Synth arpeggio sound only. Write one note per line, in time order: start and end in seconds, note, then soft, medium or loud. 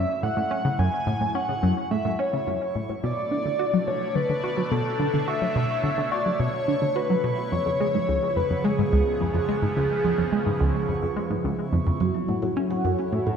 0.23 0.30 A2 medium
0.37 0.41 A2 medium
0.51 0.58 C#4 medium
0.65 0.69 C#3 medium
0.79 0.89 F#2 loud
1.07 1.14 A2 medium
1.21 1.25 A2 medium
1.35 1.42 C#4 medium
1.49 1.53 C#3 medium
1.63 1.73 F#2 loud
1.91 1.98 A2 medium
2.05 2.09 A2 medium
2.19 2.26 C#4 medium
2.33 2.37 C#3 medium
2.47 2.57 F#2 loud
2.75 2.82 A2 medium
2.89 2.93 A2 medium
3.04 3.13 B2 loud
3.31 3.38 D3 medium
3.45 3.49 D3 medium
3.59 3.66 F#4 medium
3.74 3.77 F#3 medium
3.88 3.97 B2 loud
4.15 4.22 D3 medium
4.29 4.33 D3 medium
4.44 4.50 F#4 medium
4.58 4.62 F#3 medium
4.71 4.81 B2 loud
5.00 5.06 D3 medium
5.14 5.18 D3 medium
5.28 5.34 F#4 medium
5.42 5.46 F#3 medium
5.56 5.66 B2 loud
5.84 5.90 D3 medium
5.98 6.02 D3 medium
6.12 6.18 F#4 medium
6.26 6.30 F#3 medium
6.40 6.50 B2 loud
6.68 6.74 D3 medium
6.82 6.86 D3 medium
6.96 7.02 F#4 medium
7.10 7.14 F#3 medium
7.24 7.34 B2 loud
7.52 7.59 F2 medium
7.66 7.70 F2 medium
7.80 7.87 G#3 medium
7.94 7.98 G#2 medium
8.08 8.18 C#2 loud
8.36 8.43 F2 medium
8.50 8.54 F2 medium
8.64 8.71 G#3 medium
8.79 8.82 G#2 medium
8.93 9.02 C#2 loud
9.21 9.27 F2 medium
9.35 9.38 F2 medium
9.49 9.55 G#3 medium
9.62 9.66 G#2 medium
9.76 9.86 C#2 loud
10.05 10.11 F2 medium
10.18 10.22 F2 medium
10.32 10.39 G#3 medium
10.46 10.50 G#2 medium
10.60 10.70 C#2 loud
10.89 10.95 F2 medium
11.03 11.06 F2 medium
11.16 11.23 G#3 medium
11.31 11.34 G#2 medium
11.44 11.54 C#2 loud
11.72 11.79 F2 medium
11.87 11.91 F2 medium
12.01 12.11 F#2 loud
12.29 12.35 A2 medium
12.42 12.46 A2 medium
12.57 12.63 C#4 medium
12.71 12.75 C#3 medium
12.85 12.95 F#2 loud
13.13 13.19 A2 medium
13.27 13.31 A2 medium